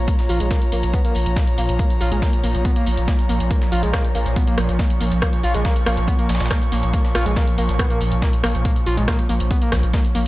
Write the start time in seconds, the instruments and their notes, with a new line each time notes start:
Already playing: synth drone A#2 F3, analog synth pad F4 C#5 A#5
0.08 analog synth lead A#3, kick, closed hi-hat
0.19 snare, closed hi-hat
0.29 sub bass A#1, analog synth lead F4, closed hi-hat, open hi-hat
0.40 sub bass A#1, analog synth lead G#3, closed hi-hat
0.51 analog synth lead A#3, kick, snare, closed hi-hat
0.62 closed hi-hat
0.72 sub bass A#1, analog synth lead A#3, closed hi-hat, open hi-hat
0.83 sub bass A#1, closed hi-hat
0.94 analog synth lead B3, kick, closed hi-hat
1.04 analog synth lead A#3, closed hi-hat
1.15 sub bass A#1, closed hi-hat, open hi-hat
1.26 sub bass A#1, closed hi-hat
1.36 analog synth lead A#3, kick, snare, closed hi-hat
1.47 closed hi-hat
1.58 sub bass A#1, analog synth lead A#3, closed hi-hat, open hi-hat
1.69 sub bass A#1, closed hi-hat
1.79 analog synth lead A#3, kick, closed hi-hat
1.90 closed hi-hat
2.01 sub bass A#1, analog synth lead F4, closed hi-hat, open hi-hat
2.12 sub bass A#1, analog synth lead G#3, closed hi-hat
2.22 analog synth lead A#3, kick, snare, closed hi-hat
2.33 closed hi-hat
2.43 sub bass A#1, analog synth lead A#3, closed hi-hat, open hi-hat
2.54 sub bass A#1, closed hi-hat
2.65 analog synth lead B3, kick, closed hi-hat
2.76 analog synth lead A#3, closed hi-hat
2.86 sub bass A#1, closed hi-hat, open hi-hat
2.97 sub bass A#1, closed hi-hat
3.08 analog synth lead A#3, kick, snare, closed hi-hat
3.19 closed hi-hat
3.29 sub bass A#1, analog synth lead A#3, closed hi-hat, open hi-hat
3.40 sub bass A#1, closed hi-hat
3.51 analog synth lead A#3, kick, closed hi-hat
3.62 snare, closed hi-hat
3.72 sub bass A#1, analog synth lead F4, closed hi-hat, open hi-hat
3.83 sub bass A#1, analog synth lead G#3, closed hi-hat
3.93 analog synth lead A#3, kick, cross-stick, snare, closed hi-hat
4.05 closed hi-hat
4.15 sub bass A#1, analog synth lead A#3, closed hi-hat, open hi-hat
4.26 sub bass A#1, closed hi-hat
4.31 analog synth pad C#6
4.36 analog synth lead B3, kick, closed hi-hat
4.47 analog synth lead A#3, closed hi-hat
4.58 sub bass A#1, cross-stick, closed hi-hat, open hi-hat
4.69 sub bass A#1, closed hi-hat
4.79 analog synth lead A#3, kick, snare, closed hi-hat
4.90 closed hi-hat
5.01 sub bass A#1, analog synth lead A#3, closed hi-hat, open hi-hat
5.12 sub bass A#1, closed hi-hat
5.22 analog synth lead A#3, kick, cross-stick, closed hi-hat
5.33 closed hi-hat
5.43 sub bass A#1, analog synth lead F4, closed hi-hat, open hi-hat
5.54 sub bass A#1, analog synth lead G#3, closed hi-hat
5.65 analog synth lead A#3, kick, snare, closed hi-hat
5.76 closed hi-hat
5.86 sub bass A#1, analog synth lead A#3, cross-stick, closed hi-hat, open hi-hat
5.97 sub bass A#1, closed hi-hat
6.08 analog synth lead B3, kick, closed hi-hat
6.19 analog synth lead A#3, closed hi-hat
6.29 sub bass A#1, snare, closed hi-hat, open hi-hat
6.35 snare, closed hi-hat
6.40 sub bass A#1, snare, closed hi-hat
6.46 snare, closed hi-hat
6.51 analog synth lead A#3, kick, cross-stick, snare, closed hi-hat
6.62 closed hi-hat
6.72 sub bass A#1, analog synth lead A#3, closed hi-hat, open hi-hat
6.83 sub bass A#1, closed hi-hat
6.94 analog synth lead A#3, kick, closed hi-hat
7.05 snare, closed hi-hat
7.15 sub bass A#1, analog synth lead F4, cross-stick, closed hi-hat, open hi-hat
7.26 sub bass A#1, analog synth lead G#3, closed hi-hat
7.36 analog synth lead A#3, kick, snare, closed hi-hat
7.47 closed hi-hat
7.58 sub bass A#1, analog synth lead A#3, closed hi-hat, open hi-hat
7.69 sub bass A#1, closed hi-hat
7.79 analog synth lead B3, kick, cross-stick, closed hi-hat
7.90 analog synth lead A#3, closed hi-hat
8.01 sub bass A#1, closed hi-hat, open hi-hat
8.12 sub bass A#1, closed hi-hat
8.22 analog synth lead A#3, kick, snare, closed hi-hat
8.33 closed hi-hat
8.44 sub bass A#1, analog synth lead A#3, cross-stick, closed hi-hat, open hi-hat
8.55 sub bass A#1, closed hi-hat
8.65 analog synth lead A#3, kick, closed hi-hat
8.76 closed hi-hat
8.86 sub bass A#1, analog synth lead F4, closed hi-hat, open hi-hat
8.97 sub bass A#1, analog synth lead G#3, closed hi-hat
9.08 analog synth lead A#3, kick, cross-stick, snare, closed hi-hat
9.19 closed hi-hat
9.29 sub bass A#1, analog synth lead A#3, closed hi-hat, open hi-hat
9.40 sub bass A#1, closed hi-hat
9.51 analog synth lead B3, kick, closed hi-hat
9.62 analog synth lead A#3, closed hi-hat
9.72 sub bass A#1, kick, cross-stick, snare, closed hi-hat, open hi-hat
9.83 sub bass A#1, closed hi-hat
9.93 analog synth lead A#3, kick, snare, closed hi-hat
10.05 closed hi-hat
10.15 sub bass A#1, analog synth lead A#3, closed hi-hat, open hi-hat